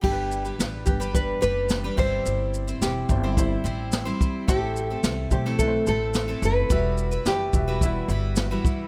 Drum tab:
CC |x-------------x-|----------------|----------------|----------------|
SH |--xxx-xxx-x-x---|x-xxx-x-x-x-x-x-|x-x-x-x-x-x-x-x-|x-xxx-x-x-x-x-x-|
SD |----o-------o---|----o-------o---|----o--o----o---|----o-------o---|
BD |o-----o-o-----o-|------o-o-----o-|o-----o-o-------|o-----o-o-----o-|